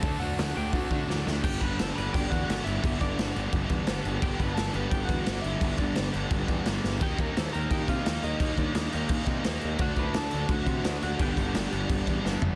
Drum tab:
CC |--------|xxxxxxxx|xxxxxxxx|xxxxxxxx|
HH |o-o-o---|--------|--------|--------|
SD |--o---oo|--o---o-|--o---o-|--o---o-|
FT |--------|--------|--------|--------|
BD |o---oo--|oo--oo--|oo--oo--|oo--oo--|

CC |xxxxxxx-|xxxxxxxx|xxxxxxxx|xxxxxxxx|
HH |--------|--------|--------|--------|
SD |--o---oo|--o---o-|--o---o-|--o---o-|
FT |--------|--------|--------|--------|
BD |oo--oo--|oo--oo--|oo--oo--|oo--oo--|

CC |xxxxxx--|
HH |--------|
SD |--o---o-|
FT |-------o|
BD |oo--oo--|